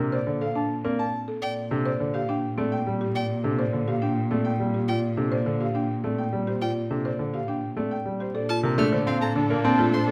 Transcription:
Already playing: A#2 C3 D4
0.00 A#4
0.12 C5 D5
0.27 D3
0.41 A4 F5
0.56 D4 A5
0.84 A#3 C4 D5
0.99 A5
1.28 A4
1.42 A#2 D5 G5
1.71 C3 D4 A4
1.85 C5 D5
2.00 D3
2.14 G4 F5
2.29 D4 G5
2.58 A3 C4 D5
2.72 G5
2.87 G3
3.01 G4
3.15 D5 G5
3.44 C3 D4 A4
3.58 C5 D5
3.73 D3
3.88 G4 F5
4.02 D4 G5
4.30 A3 C4 D5
4.45 G5
4.60 G3
4.74 G4
4.88 F4 D5 G5
5.17 C3 D4 A4
5.31 C5 D5
5.46 D3
5.60 G4 F5
5.75 D4 G5
6.04 A3 C4 D5
6.18 G5
6.33 G3
6.47 G4 C5
6.61 F4 D5 G5
6.90 C3 D4 A4
7.05 C5 D5
7.19 D3
7.33 G4 F5
7.48 D4 G5
7.76 A3 C4 D5
7.91 G5
8.06 G3
8.20 G4 C5
8.35 A#2 D4 A4 D5
8.49 F4 A5
8.63 C3 A#4
8.77 A3 D4 D5 F6
8.92 D3 C5
9.06 C4 F5
9.21 A4 A5 A#5
9.36 D3 D4
9.50 A#3 D5
9.64 C4 A5
9.79 A3 F4
9.93 C5 C6
10.07 A4 D5

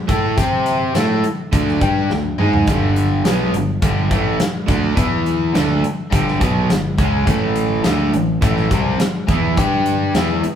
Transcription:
0.08 A2 A3 E4 A4, kick, closed hi-hat
0.38 C3 C4 G4 C5, kick, closed hi-hat
0.66 closed hi-hat
0.95 A2 A3 E4 A4, snare, closed hi-hat
1.24 muted overdriven electric guitar stroke, muted picked electric bass stroke, closed hi-hat
1.52 D2 D3 A3 D4, kick, closed hi-hat
1.68 snare
1.81 G2 G3 D4 G4, kick, closed hi-hat
2.10 D2 D3 A3, snare
2.38 G#2 G#3 D#4 G#4, mid tom
2.53 floor tom
2.67 G1 G2 D3 G3, kick, closed hi-hat
2.96 closed hi-hat
3.24 B1 B2 F#3 B3, snare, closed hi-hat
3.53 G1 G2 D3, closed hi-hat
3.82 G1 G2 D3 G3, kick, closed hi-hat
4.11 A1 A2 E3 A3, kick, closed hi-hat
4.40 muted overdriven electric guitar stroke, muted picked electric bass stroke, snare, closed hi-hat
4.68 D2 D3 A3 D4, kick, closed hi-hat
4.97 E2 E3 B3 E4, kick, closed hi-hat
5.26 closed hi-hat
5.54 D2 D3 A3 D4, snare, closed hi-hat
5.83 muted picked electric bass stroke, muted overdriven electric guitar stroke, closed hi-hat
6.10 G1 G2 D3 G3, kick, closed hi-hat
6.28 snare
6.40 B1 B2 F#3 B3, kick, closed hi-hat
6.69 G1 G2 D3, snare, closed hi-hat
6.98 C#2 C#3 G#3 C#4, kick, closed hi-hat
7.26 A1 A2 E3 A3, kick, closed hi-hat
7.56 closed hi-hat
7.84 D2 D3 A3 D4, snare, closed hi-hat
8.14 A1 A2 E3, closed hi-hat
8.42 A1 A2 E3 A3, kick, closed hi-hat
8.57 snare
8.70 C2 C3 G3 C4, kick, closed hi-hat
8.99 muted picked electric bass stroke, muted overdriven electric guitar stroke, snare, closed hi-hat
9.27 E2 E3 B3 E4, kick, closed hi-hat
9.57 G2 G3 D4 G4, kick, closed hi-hat
9.86 closed hi-hat
10.14 E2 E3 B3 E4, snare, closed hi-hat
10.44 muted overdriven electric guitar stroke, muted picked electric bass stroke, closed hi-hat

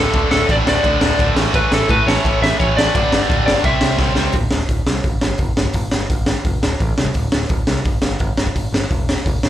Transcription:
Already playing: D2 A2 A4
0.00 D3
0.13 D1 D2 A2 D3, kick, crash
0.31 D1 A4, snare
0.48 A1 D2 A2 D3 D5, kick, crash
0.65 D1 D2 A2 D3 D5, snare
0.84 D2 A2 D3, kick, crash
1.01 D1, snare
1.18 D1 D2 A2 D3, kick, crash
1.35 A1 A2 E3 A3, snare
1.53 A1 A2 E3 A3 B4, kick, crash
1.71 A1 A4, snare
1.89 A2 E3 A3 B4, kick, crash
2.06 A1 A2 E3 A3 C#5, snare
2.24 A1 A2 E3 A3, kick, crash
2.41 A1 E5, snare
2.60 A1 A2 E3 A3 C#5, kick, crash
2.77 A1 A2 E3 A3 D5, snare
2.95 G1 G2 D3 G3, kick, crash
3.12 G1, snare
3.30 D1 G2 D3 G3, kick, crash
3.46 G1 G2 D3 G3 D5, snare
3.64 C2 C3 G3 C4 E5, kick, crash
3.81 C2, snare
3.98 C2 C3 G3 C4, kick, snare
4.15 C#2 C3 G3 C4, snare
4.32 D1, kick, open hi-hat
4.51 D1, snare
4.69 D1, kick, open hi-hat
4.87 C2, snare
5.04 G1, kick, open hi-hat
5.21 G1, snare
5.38 F#1, kick, open hi-hat
5.57 G1, snare
5.66 kick
5.73 G1, kick, open hi-hat
5.91 G1, snare
6.10 G1, kick, open hi-hat
6.26 snare
6.45 F1, kick, open hi-hat
6.63 D1, snare
6.80 A1, kick, open hi-hat
6.98 C2, snare
7.06 kick
7.14 D1, kick, open hi-hat
7.32 D1, snare
7.49 D1, kick, open hi-hat
7.67 C2, snare
7.85 G1, kick, open hi-hat
8.02 G1, snare
8.19 G1, kick, open hi-hat
8.37 G1, snare
8.47 kick
8.55 G1, kick, open hi-hat
8.72 G1, snare
8.91 E1, kick, open hi-hat
9.09 snare
9.26 F1, kick, open hi-hat
9.43 D1, snare

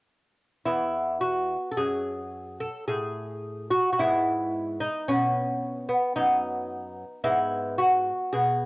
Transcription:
0.65 E2 B3 E4
1.21 F#4
1.72 A4
1.77 F#2 G#4
2.60 A4
2.88 A2 G#4
3.70 F#4
3.92 F#4
3.99 G#2 B3 E4
4.80 D#4
5.08 B2 C#4
5.89 B3
6.16 F#2 B3 D#4
7.24 G#2 B3 E4
7.78 F#4
8.33 B2 G#4

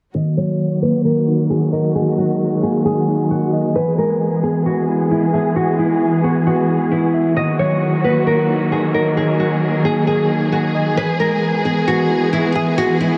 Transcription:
0.15 D#3 F#3 A#3 F#4 D#5
0.37 F#3 C#5
0.82 A#3 B4
1.05 D#3 A#4
1.28 D#4
1.50 D#3 G#4
1.72 A#4 D#5
1.95 D#3 G#3 G#4
2.18 F#3 F#4
2.63 A#3 G#4
2.85 D#3 G#4
3.08 D#4
3.30 D#3 F#4
3.53 D#5
3.76 E3 G#3 B3 G#4 B4
3.98 G#3 A#4
4.43 B3 G#4
4.66 E3 F#4
4.88 E4
5.11 E3 E4
5.34 G#4 E5
5.56 E3 F#4
5.79 G#3 E4
6.24 B3 F#4
6.46 E3 F#4
6.69 E4
6.91 E3 E4
7.14 E5
7.36 D#3 F#3 A#3 F#4 D#5
7.59 F#3 C#5
8.04 A#3 B4
8.27 D#3 A#4
8.49 D#4
8.72 D#3 G#4
8.94 A#4 D#5
9.17 D#3 G#4
9.40 F#3 F#4
9.85 A#3 G#4
10.07 D#3 G#4
10.30 D#4
10.52 D#3 F#4
10.75 D#5
10.97 E3 G#3 B3 B4
11.20 G#3 A#4
11.65 B3 G#4
11.88 E3 F#4
12.10 E4
12.33 E3 E4
12.55 G#4 E5
12.78 E3 F#4
13.00 G#3 E4

